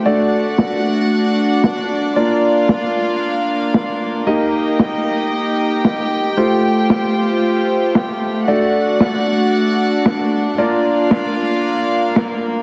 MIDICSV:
0, 0, Header, 1, 4, 480
1, 0, Start_track
1, 0, Tempo, 526316
1, 52, Time_signature, 4, 2, 24, 8
1, 11515, End_track
2, 0, Start_track
2, 0, Title_t, "String section"
2, 0, Program_c, 0, 48
2, 0, Note_on_c, 0, 57, 78
2, 54, Note_on_c, 0, 78, 87
2, 55, Note_on_c, 0, 62, 74
2, 55, Note_on_c, 0, 66, 72
2, 55, Note_on_c, 0, 74, 69
2, 1937, Note_off_c, 0, 57, 0
2, 1954, Note_off_c, 0, 66, 0
2, 1954, Note_off_c, 0, 78, 0
2, 1972, Note_on_c, 0, 58, 77
2, 1972, Note_on_c, 0, 65, 71
2, 1972, Note_on_c, 0, 77, 86
2, 3857, Note_off_c, 0, 62, 0
2, 3857, Note_off_c, 0, 74, 0
2, 3873, Note_off_c, 0, 65, 0
2, 3873, Note_off_c, 0, 77, 0
2, 3893, Note_on_c, 0, 67, 72
2, 3894, Note_on_c, 0, 63, 68
2, 3894, Note_on_c, 0, 75, 72
2, 3894, Note_on_c, 0, 79, 84
2, 5776, Note_off_c, 0, 58, 0
2, 5794, Note_off_c, 0, 63, 0
2, 5794, Note_off_c, 0, 75, 0
2, 5811, Note_on_c, 0, 57, 77
2, 5812, Note_on_c, 0, 65, 70
2, 5813, Note_on_c, 0, 72, 72
2, 7696, Note_off_c, 0, 67, 0
2, 7696, Note_off_c, 0, 79, 0
2, 7713, Note_off_c, 0, 65, 0
2, 7713, Note_off_c, 0, 72, 0
2, 7735, Note_on_c, 0, 62, 71
2, 7735, Note_on_c, 0, 74, 71
2, 7736, Note_on_c, 0, 66, 73
2, 7736, Note_on_c, 0, 78, 86
2, 9615, Note_off_c, 0, 57, 0
2, 9634, Note_off_c, 0, 74, 0
2, 9635, Note_off_c, 0, 66, 0
2, 9635, Note_off_c, 0, 78, 0
2, 9651, Note_on_c, 0, 58, 83
2, 9651, Note_on_c, 0, 65, 73
2, 9651, Note_on_c, 0, 77, 90
2, 9652, Note_on_c, 0, 74, 73
2, 11515, Note_off_c, 0, 58, 0
2, 11515, Note_off_c, 0, 62, 0
2, 11515, Note_off_c, 0, 65, 0
2, 11515, Note_off_c, 0, 74, 0
2, 11515, Note_off_c, 0, 77, 0
2, 11515, End_track
3, 0, Start_track
3, 0, Title_t, "Grand piano"
3, 0, Program_c, 1, 0
3, 52, Note_on_c, 1, 57, 76
3, 52, Note_on_c, 1, 62, 70
3, 52, Note_on_c, 1, 66, 69
3, 52, Note_on_c, 1, 74, 83
3, 1943, Note_off_c, 1, 57, 0
3, 1943, Note_off_c, 1, 62, 0
3, 1943, Note_off_c, 1, 66, 0
3, 1943, Note_off_c, 1, 74, 0
3, 1972, Note_on_c, 1, 62, 67
3, 1972, Note_on_c, 1, 65, 70
3, 1972, Note_on_c, 1, 74, 86
3, 1973, Note_on_c, 1, 58, 75
3, 3863, Note_off_c, 1, 62, 0
3, 3863, Note_off_c, 1, 65, 0
3, 3863, Note_off_c, 1, 74, 0
3, 3864, Note_off_c, 1, 58, 0
3, 3892, Note_on_c, 1, 58, 75
3, 3892, Note_on_c, 1, 63, 69
3, 3892, Note_on_c, 1, 67, 70
3, 3892, Note_on_c, 1, 75, 83
3, 5783, Note_off_c, 1, 58, 0
3, 5783, Note_off_c, 1, 63, 0
3, 5783, Note_off_c, 1, 67, 0
3, 5783, Note_off_c, 1, 75, 0
3, 5812, Note_on_c, 1, 57, 76
3, 5812, Note_on_c, 1, 65, 69
3, 5812, Note_on_c, 1, 67, 70
3, 5812, Note_on_c, 1, 72, 84
3, 7703, Note_off_c, 1, 57, 0
3, 7703, Note_off_c, 1, 65, 0
3, 7703, Note_off_c, 1, 67, 0
3, 7703, Note_off_c, 1, 72, 0
3, 7732, Note_on_c, 1, 74, 82
3, 7733, Note_on_c, 1, 57, 79
3, 7733, Note_on_c, 1, 62, 69
3, 7733, Note_on_c, 1, 66, 71
3, 9623, Note_off_c, 1, 74, 0
3, 9624, Note_off_c, 1, 57, 0
3, 9624, Note_off_c, 1, 62, 0
3, 9624, Note_off_c, 1, 66, 0
3, 9651, Note_on_c, 1, 58, 79
3, 9651, Note_on_c, 1, 62, 72
3, 9651, Note_on_c, 1, 65, 71
3, 9651, Note_on_c, 1, 74, 86
3, 11515, Note_off_c, 1, 58, 0
3, 11515, Note_off_c, 1, 62, 0
3, 11515, Note_off_c, 1, 65, 0
3, 11515, Note_off_c, 1, 74, 0
3, 11515, End_track
4, 0, Start_track
4, 0, Title_t, "Drums"
4, 533, Note_on_c, 9, 38, 119
4, 624, Note_off_c, 9, 38, 0
4, 1493, Note_on_c, 9, 38, 119
4, 1585, Note_off_c, 9, 38, 0
4, 2453, Note_on_c, 9, 38, 118
4, 2544, Note_off_c, 9, 38, 0
4, 3413, Note_on_c, 9, 38, 116
4, 3505, Note_off_c, 9, 38, 0
4, 4373, Note_on_c, 9, 38, 119
4, 4464, Note_off_c, 9, 38, 0
4, 5332, Note_on_c, 9, 38, 118
4, 5424, Note_off_c, 9, 38, 0
4, 6293, Note_on_c, 9, 38, 118
4, 6384, Note_off_c, 9, 38, 0
4, 7252, Note_on_c, 9, 38, 117
4, 7344, Note_off_c, 9, 38, 0
4, 8212, Note_on_c, 9, 38, 108
4, 8304, Note_off_c, 9, 38, 0
4, 9172, Note_on_c, 9, 38, 116
4, 9264, Note_off_c, 9, 38, 0
4, 10132, Note_on_c, 9, 38, 110
4, 10224, Note_off_c, 9, 38, 0
4, 11092, Note_on_c, 9, 38, 114
4, 11183, Note_off_c, 9, 38, 0
4, 11515, End_track
0, 0, End_of_file